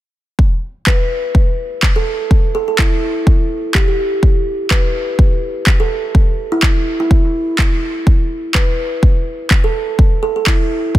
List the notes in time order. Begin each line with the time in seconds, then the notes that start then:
0.39 kick
0.87 B4, kick, clap
1.35 kick
1.83 kick, clap
1.96 A4
2.31 kick
2.55 A4
2.68 A4
2.79 E4, kick, clap
3.27 kick
3.75 G4, kick, clap
3.88 G4
4.23 kick
4.71 B4, kick, clap
5.19 kick
5.67 kick, clap
5.80 A4
6.15 kick
6.52 E4
6.63 kick, clap
7.00 E4
7.11 kick
7.59 kick, clap
8.07 kick
8.55 B4, kick, clap
9.03 kick
9.51 kick, clap
9.64 A4
9.99 kick
10.23 A4
10.36 A4
10.47 E4, kick, clap
10.95 kick